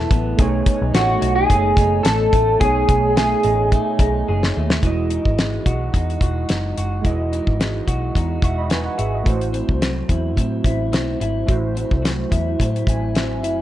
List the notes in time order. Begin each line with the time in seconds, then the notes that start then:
Already playing: F#3 A3 B3 E4 G#4 A4 B4
0.11 A1 B3, kick, closed hi-hat
0.37 B1 B2 A3 D#4 G#4 G#5, kick, closed hi-hat
0.41 C#5
0.66 D#4, kick, closed hi-hat
0.82 B1
0.93 A1 A3 F#4, snare, closed hi-hat
1.21 B1 D#4, closed hi-hat
1.36 G#4
1.50 F#1 A3, kick, closed hi-hat
1.77 F#1 D#4, kick, closed hi-hat
2.03 A1 A4, snare, closed hi-hat
2.33 A1 A3, kick, closed hi-hat
2.59 B1 B2 A3 D#4 G#4, kick, closed hi-hat
2.64 C#5
2.88 B1 D#4, kick, closed hi-hat
3.16 A3 G#4, snare, closed hi-hat
3.43 A1 D#4, closed hi-hat
3.72 A3, kick, closed hi-hat
3.99 B1 D#4, kick, closed hi-hat
4.29 F#1 G#4
4.43 snare
4.56 D#2 A3
4.70 snare
4.81 E1 E3 G#3 E4 F#4, kick, closed hi-hat
4.87 D#5
5.10 D#4, closed hi-hat
5.25 G#1, kick
5.38 G#3, snare, closed hi-hat
5.66 B1 F#4, kick, closed hi-hat
5.93 E2 D#4, kick, closed hi-hat
6.10 closed hi-hat
6.21 E1 F#4, kick, closed hi-hat
6.49 F#1 D#4, snare, closed hi-hat
6.77 F#1 F#4, closed hi-hat
7.02 E1 E3 G#3 E4 F#4, kick, closed hi-hat
7.06 D#5
7.33 D#4, closed hi-hat
7.47 G#1, kick
7.60 G#3, snare, closed hi-hat
7.87 B1 F#4, kick, closed hi-hat
8.15 E2 D#4, kick, closed hi-hat
8.42 E1 F#4 E5 C#6, kick, closed hi-hat
8.58 D#5 B5
8.70 D#4 B4 G#5, snare, closed hi-hat
8.85 F#5
8.98 G#1 F#4 G#4 E5, closed hi-hat
9.14 F#4 D#5
9.23 A1 A2 A3 E4 F#4, kick, closed hi-hat
9.29 C5
9.41 closed hi-hat
9.53 C4, closed hi-hat
9.69 C2, kick
9.82 F#3, snare, closed hi-hat
10.09 E2 E4, kick, closed hi-hat
10.37 A2 C4, kick, closed hi-hat
10.64 A1 E4, kick, closed hi-hat
10.92 B1 C4, snare, closed hi-hat
11.20 G#1 E4, closed hi-hat
11.46 A1 A2 A3 E4 F#4, kick, closed hi-hat
11.51 C5
11.75 C4, closed hi-hat
11.91 C2, kick
12.03 F#3, snare, closed hi-hat
12.31 E2 E4, kick, closed hi-hat
12.59 A2 C4, kick, closed hi-hat
12.76 closed hi-hat
12.87 A1 E4 G#5, kick, closed hi-hat
13.15 C4 E5, snare, closed hi-hat
13.43 F#1 E4, closed hi-hat